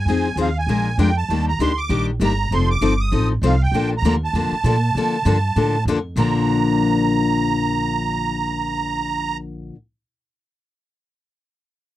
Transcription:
0.00 G#5
0.05 F2 F3 C4 D#4
0.10 G#4
0.36 D#2 F3 C4 D#4 G#4
0.41 F5
0.58 G#5
0.67 A#1 F3 G#3 D4 F4 A#4
0.98 F2 F3 G#3 D4 F4 A#4 G5
1.17 A5
1.29 D#2 D#3 G3 A#3 D4 G4
1.49 A#5
1.59 D2 D#3 G3 A#3 D4 G4 C6
1.78 D6
1.89 A#1 D#3 G3 A#3 D4 G4
2.20 G1 D#3 G3 A#3 D4 G4 A#5
2.51 F1 F3 C4 D#4 A4 C6
2.71 D6
2.81 G1 F3 C4 D#4 A4
3.01 D#6
3.12 A1 F3 C4 D#4 A4
3.42 C2 F3 C4 D#4 A4 F5
3.63 G5
3.72 A#1 D3 F3 A#3 D4 A4
3.98 A#5
4.02 D#2 D3 F3 A#3 D4 A4
4.24 A5
4.33 F2 D3 F3 A#3 D4 A4
4.51 muted upright bass stroke
4.64 A#2 D3 F3 A#3 D4 A4
4.95 D3 F3 A#3 D4 A4
5.25 G2 D3 F3 A#3 D4 A4
5.56 A2 D3 F3 A#3 D4 A4
5.85 F2 D3 F3 A#3 D4 A4
6.16 A#1 A#2 D3 F3 A#3 D4 A#5

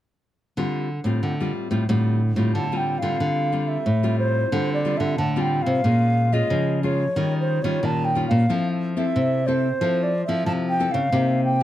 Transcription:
0.57 D3 G3 C4 F4
1.04 A2 G3 C4 F4
1.23 A2 D3
1.40 G3 C4 F4
1.71 A2 G3 C4 F4
1.89 A2 D3 G3 C4 F4
2.36 A2 G3 C4 F4
2.54 A2 D3 A5
2.72 G3 C4 F4
2.77 G5
2.98 F5
3.02 D3 G3 C4 F4
3.20 D3
3.52 G3 C4 F4
3.68 E5
3.86 A2
4.03 G3 C4 F4
4.19 C5
4.52 D3 G3 C4 F4
4.74 D5
4.85 G3 C4 F4
4.97 D3 E5
5.18 A2 D3 A5
5.36 G3 C4 F4
5.41 G5
5.62 F5
5.66 C3
5.84 A#2 G#3 C#4 F4
6.32 G#3 C#4 F4 D#5
6.50 C#3 F3
6.83 G#3 C#4 F4 C#5
7.16 D#3 G3 C#4 F4
7.40 C5
7.62 D#3 G3 C#4 F4 C#5
7.83 A#2 D#3 A5
8.05 G5
8.15 G3 C#4 F4
8.28 A#2 F5
8.49 F3 C4 E4 A4
8.97 C4 E4 A4 E5
9.16 C3
9.47 C4 E4 A4 C5
9.81 F3 C4 E4 A4
10.03 D5
10.26 F3 C4 E4 A4 E5
10.46 C3 F3 A5
10.69 G5
10.80 C4 E4 A4
10.92 C#3 F5
11.12 C3 A#3 D#4 G4
11.45 G5

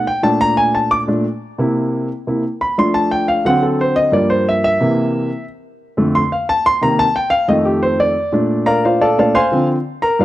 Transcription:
0.07 G5
0.23 A#2 A3 D4 A5
0.41 A#5
0.57 G#5
0.75 A5
0.91 D6
1.08 A#2 A3 D4
1.58 C3 A#3 E4
2.27 C3 A#3 E4
2.61 B5
2.78 F3 A3 D4 C6
2.94 A5
3.11 G5
3.28 F5
3.45 D3 F#3 C4 F#5
3.63 A4
3.81 C5
3.96 D#5
4.12 G2 F3 A#3 D5
4.30 C5
4.49 E5
4.64 E5
4.80 C3 E3 A#3
5.97 F2 D3 A3
6.15 C6
6.32 F5
6.49 A5
6.66 C6
6.81 C3 D#3 A#3 A#5
6.99 A5
7.16 G5
7.30 F5
7.48 F2 D#3 A3 D#5
7.65 G4
7.83 C5
8.00 D5
8.32 A#2 A3 D4
8.66 A#4 D5 F5 A#5
8.85 F4 C5 D5 F5
9.01 A4 D5 F5 A5
9.18 A#2 A3 D4 A4 D5 F5 A5
9.35 C5 F5 G#5 C6
9.51 D3 F3 C4
10.02 A#4 A#5
10.19 G2 F3 B3 F4 B4 D5 F5

